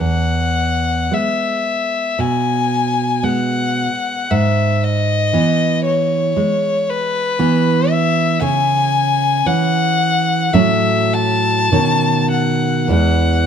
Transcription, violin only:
0, 0, Header, 1, 2, 480
1, 0, Start_track
1, 0, Time_signature, 4, 2, 24, 8
1, 0, Key_signature, 4, "major"
1, 0, Tempo, 1119403
1, 480, Tempo, 1063830
1, 1920, Tempo, 1029160
1, 4320, Tempo, 1084991
1, 4800, Tempo, 1202405
1, 5967, End_track
2, 0, Start_track
2, 0, Title_t, "Violin"
2, 0, Program_c, 0, 40
2, 1, Note_on_c, 0, 78, 44
2, 487, Note_on_c, 0, 76, 37
2, 494, Note_off_c, 0, 78, 0
2, 968, Note_on_c, 0, 80, 44
2, 975, Note_off_c, 0, 76, 0
2, 1438, Note_on_c, 0, 78, 47
2, 1445, Note_off_c, 0, 80, 0
2, 1917, Note_on_c, 0, 76, 47
2, 1924, Note_off_c, 0, 78, 0
2, 2167, Note_on_c, 0, 75, 53
2, 2174, Note_off_c, 0, 76, 0
2, 2640, Note_off_c, 0, 75, 0
2, 2643, Note_on_c, 0, 73, 47
2, 3127, Note_on_c, 0, 71, 57
2, 3134, Note_off_c, 0, 73, 0
2, 3597, Note_on_c, 0, 76, 59
2, 3604, Note_off_c, 0, 71, 0
2, 3838, Note_off_c, 0, 76, 0
2, 3843, Note_on_c, 0, 80, 67
2, 4324, Note_on_c, 0, 78, 68
2, 4330, Note_off_c, 0, 80, 0
2, 4797, Note_on_c, 0, 76, 57
2, 4803, Note_off_c, 0, 78, 0
2, 5039, Note_on_c, 0, 81, 61
2, 5045, Note_off_c, 0, 76, 0
2, 5506, Note_off_c, 0, 81, 0
2, 5509, Note_on_c, 0, 78, 50
2, 5749, Note_off_c, 0, 78, 0
2, 5760, Note_on_c, 0, 78, 53
2, 5967, Note_off_c, 0, 78, 0
2, 5967, End_track
0, 0, End_of_file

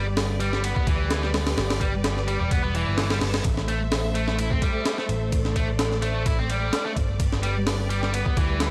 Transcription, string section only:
0, 0, Header, 1, 2, 480
1, 0, Start_track
1, 0, Tempo, 468750
1, 1613, Time_signature, 4, 2, 24, 8
1, 8915, End_track
2, 0, Start_track
2, 0, Title_t, "String section"
2, 0, Program_c, 0, 48
2, 0, Note_on_c, 0, 55, 80
2, 0, Note_on_c, 0, 67, 75
2, 0, Note_on_c, 0, 71, 73
2, 0, Note_on_c, 0, 74, 92
2, 3496, Note_off_c, 0, 55, 0
2, 3496, Note_off_c, 0, 71, 0
2, 3496, Note_off_c, 0, 74, 0
2, 3497, Note_off_c, 0, 67, 0
2, 3526, Note_on_c, 0, 69, 74
2, 3526, Note_on_c, 0, 72, 72
2, 3527, Note_on_c, 0, 76, 87
2, 3528, Note_on_c, 0, 57, 80
2, 5431, Note_off_c, 0, 76, 0
2, 5447, Note_on_c, 0, 74, 89
2, 7331, Note_off_c, 0, 69, 0
2, 7331, Note_off_c, 0, 72, 0
2, 7332, Note_off_c, 0, 57, 0
2, 7369, Note_on_c, 0, 55, 82
2, 7373, Note_on_c, 0, 67, 74
2, 7373, Note_on_c, 0, 71, 74
2, 8915, Note_off_c, 0, 55, 0
2, 8915, Note_off_c, 0, 67, 0
2, 8915, Note_off_c, 0, 71, 0
2, 8915, Note_off_c, 0, 74, 0
2, 8915, End_track
0, 0, End_of_file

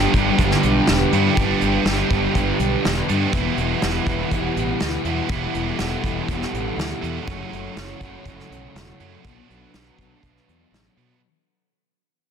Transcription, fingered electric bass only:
0, 0, Header, 1, 2, 480
1, 0, Start_track
1, 0, Key_signature, 2, "minor"
1, 0, Tempo, 492611
1, 1330, Time_signature, 4, 2, 24, 8
1, 11993, End_track
2, 0, Start_track
2, 0, Title_t, "Fingered electric bass"
2, 0, Program_c, 0, 33
2, 132, Note_on_c, 0, 31, 95
2, 282, Note_off_c, 0, 31, 0
2, 381, Note_on_c, 0, 31, 92
2, 528, Note_off_c, 0, 31, 0
2, 619, Note_on_c, 0, 35, 90
2, 767, Note_off_c, 0, 35, 0
2, 864, Note_on_c, 0, 28, 84
2, 1010, Note_off_c, 0, 28, 0
2, 1097, Note_on_c, 0, 43, 82
2, 1245, Note_off_c, 0, 43, 0
2, 1333, Note_on_c, 0, 31, 90
2, 1482, Note_off_c, 0, 31, 0
2, 1574, Note_on_c, 0, 31, 86
2, 1723, Note_off_c, 0, 31, 0
2, 1803, Note_on_c, 0, 31, 85
2, 1955, Note_off_c, 0, 31, 0
2, 2051, Note_on_c, 0, 31, 81
2, 2201, Note_off_c, 0, 31, 0
2, 2295, Note_on_c, 0, 31, 86
2, 2444, Note_off_c, 0, 31, 0
2, 2527, Note_on_c, 0, 35, 90
2, 2678, Note_off_c, 0, 35, 0
2, 2782, Note_on_c, 0, 28, 78
2, 2928, Note_off_c, 0, 28, 0
2, 3016, Note_on_c, 0, 43, 84
2, 3164, Note_off_c, 0, 43, 0
2, 3250, Note_on_c, 0, 28, 92
2, 3400, Note_off_c, 0, 28, 0
2, 3483, Note_on_c, 0, 28, 84
2, 3635, Note_off_c, 0, 28, 0
2, 3729, Note_on_c, 0, 28, 89
2, 3879, Note_off_c, 0, 28, 0
2, 3962, Note_on_c, 0, 28, 87
2, 4114, Note_off_c, 0, 28, 0
2, 4207, Note_on_c, 0, 28, 94
2, 4357, Note_off_c, 0, 28, 0
2, 4446, Note_on_c, 0, 33, 90
2, 4596, Note_off_c, 0, 33, 0
2, 4688, Note_on_c, 0, 38, 88
2, 4837, Note_off_c, 0, 38, 0
2, 4915, Note_on_c, 0, 40, 82
2, 5068, Note_off_c, 0, 40, 0
2, 5156, Note_on_c, 0, 28, 98
2, 5309, Note_off_c, 0, 28, 0
2, 5404, Note_on_c, 0, 28, 92
2, 5555, Note_off_c, 0, 28, 0
2, 5645, Note_on_c, 0, 28, 87
2, 5795, Note_off_c, 0, 28, 0
2, 5886, Note_on_c, 0, 28, 88
2, 6035, Note_off_c, 0, 28, 0
2, 6123, Note_on_c, 0, 28, 91
2, 6274, Note_off_c, 0, 28, 0
2, 6364, Note_on_c, 0, 33, 85
2, 6515, Note_off_c, 0, 33, 0
2, 6593, Note_on_c, 0, 38, 80
2, 6747, Note_off_c, 0, 38, 0
2, 6844, Note_on_c, 0, 40, 80
2, 6994, Note_off_c, 0, 40, 0
2, 7090, Note_on_c, 0, 30, 92
2, 7238, Note_off_c, 0, 30, 0
2, 7330, Note_on_c, 0, 30, 84
2, 7478, Note_off_c, 0, 30, 0
2, 7565, Note_on_c, 0, 30, 89
2, 7715, Note_off_c, 0, 30, 0
2, 7801, Note_on_c, 0, 30, 87
2, 7952, Note_off_c, 0, 30, 0
2, 8044, Note_on_c, 0, 30, 90
2, 8194, Note_off_c, 0, 30, 0
2, 8286, Note_on_c, 0, 35, 85
2, 8436, Note_off_c, 0, 35, 0
2, 8526, Note_on_c, 0, 28, 81
2, 8676, Note_off_c, 0, 28, 0
2, 8769, Note_on_c, 0, 42, 81
2, 8917, Note_off_c, 0, 42, 0
2, 9011, Note_on_c, 0, 35, 95
2, 9159, Note_off_c, 0, 35, 0
2, 9255, Note_on_c, 0, 35, 83
2, 9402, Note_off_c, 0, 35, 0
2, 9491, Note_on_c, 0, 35, 86
2, 9639, Note_off_c, 0, 35, 0
2, 9722, Note_on_c, 0, 35, 81
2, 9873, Note_off_c, 0, 35, 0
2, 9967, Note_on_c, 0, 35, 86
2, 10116, Note_off_c, 0, 35, 0
2, 10214, Note_on_c, 0, 40, 81
2, 10362, Note_off_c, 0, 40, 0
2, 10441, Note_on_c, 0, 33, 79
2, 10593, Note_off_c, 0, 33, 0
2, 10687, Note_on_c, 0, 47, 80
2, 10836, Note_off_c, 0, 47, 0
2, 11993, End_track
0, 0, End_of_file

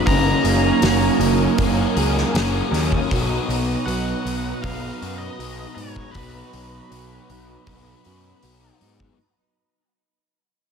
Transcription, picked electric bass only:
0, 0, Header, 1, 2, 480
1, 0, Start_track
1, 0, Key_signature, 5, "major"
1, 0, Tempo, 761421
1, 38, Time_signature, 4, 2, 24, 8
1, 6755, End_track
2, 0, Start_track
2, 0, Title_t, "Picked electric bass"
2, 0, Program_c, 0, 34
2, 43, Note_on_c, 0, 30, 86
2, 208, Note_off_c, 0, 30, 0
2, 276, Note_on_c, 0, 30, 83
2, 443, Note_off_c, 0, 30, 0
2, 519, Note_on_c, 0, 30, 80
2, 684, Note_off_c, 0, 30, 0
2, 750, Note_on_c, 0, 30, 87
2, 918, Note_off_c, 0, 30, 0
2, 1001, Note_on_c, 0, 30, 84
2, 1165, Note_off_c, 0, 30, 0
2, 1237, Note_on_c, 0, 37, 81
2, 1402, Note_off_c, 0, 37, 0
2, 1475, Note_on_c, 0, 30, 72
2, 1641, Note_off_c, 0, 30, 0
2, 1713, Note_on_c, 0, 39, 83
2, 1880, Note_off_c, 0, 39, 0
2, 1964, Note_on_c, 0, 35, 86
2, 2127, Note_off_c, 0, 35, 0
2, 2197, Note_on_c, 0, 35, 93
2, 2362, Note_off_c, 0, 35, 0
2, 2435, Note_on_c, 0, 35, 86
2, 2601, Note_off_c, 0, 35, 0
2, 2679, Note_on_c, 0, 35, 77
2, 2844, Note_off_c, 0, 35, 0
2, 2925, Note_on_c, 0, 35, 77
2, 3087, Note_off_c, 0, 35, 0
2, 3165, Note_on_c, 0, 42, 83
2, 3327, Note_off_c, 0, 42, 0
2, 3396, Note_on_c, 0, 35, 69
2, 3562, Note_off_c, 0, 35, 0
2, 3633, Note_on_c, 0, 44, 82
2, 3800, Note_off_c, 0, 44, 0
2, 3878, Note_on_c, 0, 35, 80
2, 4043, Note_off_c, 0, 35, 0
2, 4118, Note_on_c, 0, 35, 83
2, 4283, Note_off_c, 0, 35, 0
2, 4357, Note_on_c, 0, 35, 76
2, 4523, Note_off_c, 0, 35, 0
2, 4598, Note_on_c, 0, 35, 84
2, 4763, Note_off_c, 0, 35, 0
2, 4835, Note_on_c, 0, 35, 80
2, 5001, Note_off_c, 0, 35, 0
2, 5081, Note_on_c, 0, 42, 84
2, 5245, Note_off_c, 0, 42, 0
2, 5315, Note_on_c, 0, 35, 76
2, 5481, Note_off_c, 0, 35, 0
2, 5557, Note_on_c, 0, 44, 76
2, 5723, Note_off_c, 0, 44, 0
2, 6755, End_track
0, 0, End_of_file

